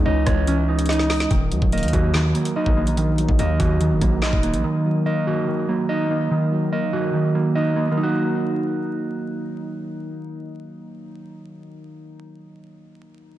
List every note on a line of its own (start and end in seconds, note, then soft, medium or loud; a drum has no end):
0.00 0.27 E3 loud
0.00 0.68 G#3 medium
0.00 0.06 C#4 medium
0.00 0.47 C#4 medium
0.00 0.67 D#4 medium
0.00 0.89 D#4 loud
0.05 0.26 C#2 loud
0.05 1.10 C#4 medium
0.05 0.88 D#5 medium
0.26 1.27 C#2 loud
0.26 0.46 E3 medium
0.26 1.31 C#5 medium
0.26 kick medium
0.26 cross-stick loud
0.26 closed hi-hat medium
0.47 1.31 E3 loud
0.47 1.31 C#4 medium
0.47 closed hi-hat medium
0.68 1.31 G#3 medium
0.68 1.08 D#4 medium
0.79 closed hi-hat medium
0.86 1.09 D#4 medium
0.86 1.31 D#5 medium
0.86 snare medium
0.86 closed hi-hat medium
0.93 closed hi-hat soft
0.99 snare medium
1.10 1.31 D#4 medium
1.10 snare loud
1.10 open hi-hat medium
1.20 snare loud
1.20 closed hi-hat medium
1.31 1.53 D#1 loud
1.31 2.12 D#3 loud
1.31 1.92 D#3 medium
1.31 kick loud
1.31 closed hi-hat medium
1.52 1.61 D#2 loud
1.52 2.34 F#3 medium
1.52 closed hi-hat medium
1.62 1.84 D#1 loud
1.62 kick loud
1.72 2.77 A#3 medium
1.72 2.55 D#5 medium
1.72 closed hi-hat medium
1.78 closed hi-hat medium
1.83 1.93 D#2 medium
1.83 closed hi-hat medium
1.88 closed hi-hat medium
1.93 2.33 D#2 loud
1.93 2.13 D#3 medium
1.93 3.18 F#4 medium
1.93 kick medium
1.93 closed hi-hat medium
2.13 2.96 D#3 medium
2.13 snare loud
2.13 clap medium
2.35 3.17 F#3 medium
2.35 2.76 A#3 medium
2.35 closed hi-hat medium
2.45 closed hi-hat medium
2.56 2.75 D#4 medium
2.56 3.38 D#5 medium
2.66 3.26 A#1 loud
2.66 kick loud
2.77 4.00 A#3 medium
2.77 3.81 D#4 medium
2.87 closed hi-hat medium
2.97 3.80 D#3 loud
2.97 3.59 D#3 medium
2.97 closed hi-hat medium
3.18 4.00 F#3 medium
3.18 closed hi-hat medium
3.29 3.39 A#1 loud
3.29 kick medium
3.39 3.59 D#2 loud
3.39 4.43 A#3 medium
3.39 4.21 D#5 medium
3.39 closed hi-hat medium
3.59 3.93 D#2 loud
3.59 3.80 D#3 medium
3.59 4.85 F#4 medium
3.59 kick medium
3.59 closed hi-hat medium
3.81 4.63 D#3 medium
3.81 closed hi-hat medium
3.91 4.01 F#1 loud
4.01 4.32 A#1 loud
4.01 4.84 F#3 medium
4.01 4.42 A#3 medium
4.01 kick medium
4.01 closed hi-hat medium
4.22 4.42 D#4 medium
4.22 5.05 D#5 medium
4.22 snare loud
4.22 clap medium
4.33 4.55 D#1 loud
4.33 kick loud
4.43 5.67 A#3 medium
4.43 5.47 D#4 medium
4.43 closed hi-hat medium
4.54 4.63 A#1 medium
4.54 closed hi-hat medium
4.64 5.25 D#3 medium
4.64 5.46 D#3 medium
4.85 5.67 F#3 medium
5.06 6.10 A#3 medium
5.06 5.88 D#5 medium
5.27 5.46 D#3 medium
5.27 6.52 F#4 medium
5.47 6.30 D#3 medium
5.68 6.50 F#3 medium
5.68 6.09 A#3 medium
5.89 6.09 D#4 medium
5.89 6.71 D#5 medium
6.10 7.34 A#3 medium
6.10 7.14 D#4 medium
6.31 6.92 D#3 loud
6.31 7.12 D#3 loud
6.52 7.34 F#3 medium
6.72 7.77 A#3 medium
6.72 7.54 D#5 medium
6.93 7.13 D#3 medium
6.93 7.97 F#4 medium
7.13 7.97 D#3 medium
7.13 7.90 D#3 medium
7.35 7.94 F#3 medium
7.35 7.75 A#3 medium
7.55 7.75 D#4 medium
7.55 7.97 D#5 medium
7.76 7.90 A#3 medium
7.76 7.97 D#4 medium
7.91 12.08 D#3 medium
7.91 12.08 A#3 medium
7.95 12.12 F#3 medium
7.95 12.14 D#4 medium
7.99 12.16 A#3 medium
7.99 12.20 F#4 medium
8.03 12.20 D#4 medium